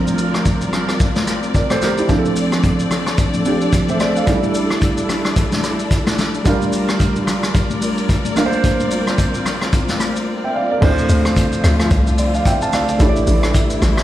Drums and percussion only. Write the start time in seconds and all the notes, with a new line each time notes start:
0.07 high conga, shaker
0.18 shaker
0.34 cross-stick, high conga, shaker
0.45 kick, shaker
0.61 shaker
0.73 cross-stick, low conga, shaker
0.89 cross-stick, shaker
1.00 kick, low conga, shaker
1.16 snare, high conga, shaker
1.27 cross-stick, high conga, shaker
1.43 shaker
1.55 kick, shaker
1.70 cross-stick, high conga, shaker
1.82 snare, high conga, low conga, shaker
1.98 shaker
2.09 kick, low conga, shaker
2.25 high conga, shaker
2.36 open hi-hat, shaker
2.52 cross-stick, high conga, shaker
2.63 kick, hi-hat pedal, shaker
2.79 shaker
2.91 cross-stick, open hi-hat, low conga, shaker
3.07 cross-stick, shaker
3.18 kick, hi-hat pedal, low conga, shaker
3.34 high conga, shaker
3.45 open hi-hat, high conga, shaker
3.61 shaker
3.73 kick, hi-hat pedal, shaker
3.88 high conga, shaker
4.00 cross-stick, open hi-hat, high conga, low conga, shaker
4.16 shaker
4.27 kick, hi-hat pedal, low conga, shaker
4.43 high conga, shaker
4.54 open hi-hat, shaker
4.70 cross-stick, high conga, shaker
4.82 kick, hi-hat pedal, shaker
4.98 shaker
5.09 cross-stick, open hi-hat, low conga, shaker
5.25 cross-stick, shaker
5.36 kick, hi-hat pedal, low conga, shaker
5.52 snare, high conga, shaker
5.63 cross-stick, open hi-hat, high conga, shaker
5.79 shaker
5.91 kick, hi-hat pedal, shaker
6.07 cross-stick, snare, high conga, shaker
6.18 snare, open hi-hat, high conga, low conga, shaker
6.34 shaker
6.45 kick, hi-hat pedal, low conga, shaker
6.62 high conga, shaker
6.73 open hi-hat, shaker
6.88 cross-stick, high conga, shaker
7.00 kick, hi-hat pedal, shaker
7.16 shaker
7.27 cross-stick, open hi-hat, low conga, shaker
7.43 cross-stick, shaker
7.55 kick, hi-hat pedal, low conga, shaker
7.70 high conga, shaker
7.82 open hi-hat, high conga, shaker
7.98 shaker
8.09 kick, hi-hat pedal, shaker
8.25 high conga, shaker
8.37 cross-stick, open hi-hat, high conga, low conga, shaker
8.53 shaker
8.64 kick, hi-hat pedal, low conga, shaker
8.80 high conga, shaker
8.91 open hi-hat, shaker
9.06 cross-stick, high conga, shaker
9.18 kick, hi-hat pedal, shaker
9.34 shaker
9.46 cross-stick, open hi-hat, high conga, low conga, shaker
9.61 cross-stick, shaker
9.73 kick, hi-hat pedal, low conga, shaker
9.88 snare, high conga, shaker
10.00 cross-stick, open hi-hat, high conga, shaker
10.16 shaker
10.82 kick, crash
10.98 shaker
11.09 open hi-hat, shaker
11.25 cross-stick, shaker
11.36 kick, hi-hat pedal, shaker
11.52 shaker
11.64 cross-stick, open hi-hat, shaker
11.80 cross-stick, shaker
11.91 kick, hi-hat pedal, shaker
12.07 shaker
12.18 open hi-hat, shaker
12.34 shaker
12.45 kick, hi-hat pedal, shaker
12.61 shaker
12.73 cross-stick, open hi-hat, shaker
12.89 shaker
13.00 kick, hi-hat pedal, shaker
13.16 shaker
13.27 open hi-hat, shaker
13.43 cross-stick, shaker
13.54 kick, hi-hat pedal, shaker
13.70 shaker
13.82 cross-stick, open hi-hat, shaker
13.97 cross-stick, shaker